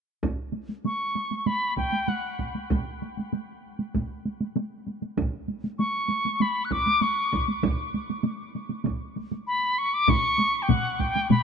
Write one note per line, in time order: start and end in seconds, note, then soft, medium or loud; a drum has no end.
0.23 taiko medium
0.23 taiko high soft
0.53 taiko high soft
0.69 taiko high soft
0.84 1.48 C#6 medium
0.84 taiko high medium
1.16 taiko high soft
1.31 taiko high soft
1.46 1.77 B5 medium
1.46 taiko high medium
1.77 2.10 G5 medium
1.77 taiko medium
1.77 taiko high soft
1.92 taiko high soft
2.08 2.55 F#5 medium
2.08 taiko high medium
2.39 taiko soft
2.39 taiko high soft
2.55 taiko high soft
2.70 taiko medium
2.70 taiko high medium
3.02 taiko high soft
3.17 taiko high soft
3.33 taiko high medium
3.79 taiko high soft
3.94 taiko medium
3.94 taiko high medium
4.25 taiko high soft
4.41 taiko high soft
4.56 taiko high medium
4.87 taiko high soft
5.02 taiko high soft
5.17 taiko medium
5.17 taiko high medium
5.48 taiko high soft
5.64 taiko high soft
5.79 6.43 C#6 medium
5.79 taiko high medium
6.09 taiko high soft
6.25 taiko high soft
6.40 6.66 B5 medium
6.40 taiko high medium
6.65 6.74 F#6 medium
6.71 7.04 D6 medium
6.71 taiko medium
6.71 taiko high soft
6.86 taiko high soft
7.02 7.48 C#6 medium
7.02 taiko high medium
7.32 taiko medium
7.32 taiko high soft
7.48 taiko high soft
7.63 taiko medium
7.63 taiko high medium
7.94 taiko high soft
8.10 taiko high soft
8.24 taiko high medium
8.55 taiko high soft
8.70 taiko high soft
8.85 taiko medium
8.85 taiko high medium
9.16 taiko high soft
9.32 taiko high soft
9.47 9.80 B5 medium
9.78 9.95 C#6 medium
9.94 10.11 D6 medium
10.08 10.64 C#6 loud
10.08 taiko medium
10.08 taiko low-mid medium
10.08 taiko high medium
10.38 taiko high medium
10.62 10.71 G5 medium
10.69 11.02 F#5 medium
10.69 taiko medium
10.69 taiko low-mid medium
10.69 taiko high medium
11.00 11.30 G5 medium
11.00 taiko medium
11.00 taiko high soft
11.15 taiko high soft
11.30 11.43 B5 medium
11.30 taiko low-mid medium
11.30 taiko high medium